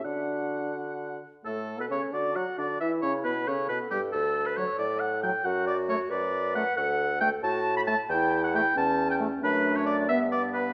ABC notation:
X:1
M:6/8
L:1/16
Q:3/8=90
K:D
V:1 name="Flute"
f8- f z3 | A3 B c2 d2 f2 d2 | e2 c2 B2 c2 B2 G2 | A3 B c2 d2 f2 g2 |
f2 d2 c2 d4 f2 | f4 g2 a3 b a2 | g3 f g2 a3 g z2 | B3 c d2 e2 d2 B2 |]
V:2 name="Oboe"
f8- f2 z2 | A3 B c2 d2 f2 d2 | e2 c2 B2 c2 B2 G2 | A3 B c2 d2 f2 g2 |
f2 d2 c2 d4 f2 | f4 g2 a3 b a2 | g3 f g2 a3 g z2 | B3 c d2 e2 d2 B2 |]
V:3 name="Clarinet"
F8- F2 z2 | A6 F6 | E6 A6- | A12 |
F6 B6 | A6 F4 z2 | E6 C6 | D6 B,6 |]
V:4 name="French horn"
D6 z6 | A,3 B, C2 D2 F2 D2 | E2 C2 B,2 C2 B,2 G,2 | z4 F, z4 z F, z |
z4 A, z4 z A, z | z4 A, z4 z A, z | z4 A, z4 z A, z | A,6 B,6 |]
V:5 name="Bassoon" clef=bass
D,8- D,2 z2 | A,,3 B,, C,2 D,2 F,2 D,2 | E,2 C,2 B,,2 C,2 B,,2 G,,2 | D,,6 A,,6 |
F,,6 F,,6 | D,,6 A,,6 | E,,6 E,,6 | F,,6 G,,6 |]